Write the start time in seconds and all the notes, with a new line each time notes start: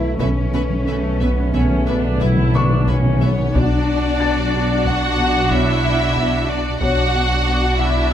Already playing: B1 B2 A3 B3 E4 B4
0.01 B2
0.08 B2
0.16 B1 B2 A3 B3 C#4 B4 E5, taiko
0.20 B1 B2 A3 B4
0.32 B2
0.40 B2
0.47 B2
0.53 B1 B2 A3 B4 E5
0.63 B2
0.70 B2, taiko mid
0.78 B2
0.86 B1 B2 A3 B3 B4 E5
0.94 B2
1.01 B2
1.09 B2
1.17 B1 B2 E5
1.21 B2 B3 B4
1.31 B2
1.39 B2
1.47 B2
1.53 B1 B2 B3 C#4 B4 E5, taiko
1.62 B2
1.70 B2
1.78 B2
1.85 B1 B2 D4 B4 E5
1.92 B2
2.01 B2
2.08 B2
2.16 B2
2.21 B1 B2 B3 E4 B4 E5, taiko
2.31 B2
2.37 B2, taiko mid
2.47 B2
2.54 B1 B2 D4 B4 E5 C#6, taiko mid
2.62 B2
2.71 B2
2.78 B2
2.86 B1 B2 C#4 B4 E5, taiko
2.94 B2
3.02 B2, taiko mid
3.09 B2
3.17 B2 E5
3.21 B1 B2 B3 C#4 B4 C#5
3.32 B2
3.40 B2
3.55 B1 B2 D4 F#4 D5, taiko
3.89 B2
4.20 B3 A5 A6
4.54 B2
4.86 B3 F#4 F#5, taiko
5.19 B2
5.51 B3 E4 F#4 C#5 E5, taiko
5.84 B2
6.16 B2, taiko
6.49 B2 D4 D5
6.81 B1 B2 D4 F#4 C#5 F#5, taiko
7.15 B2
7.47 B3
7.79 B2 E4 E5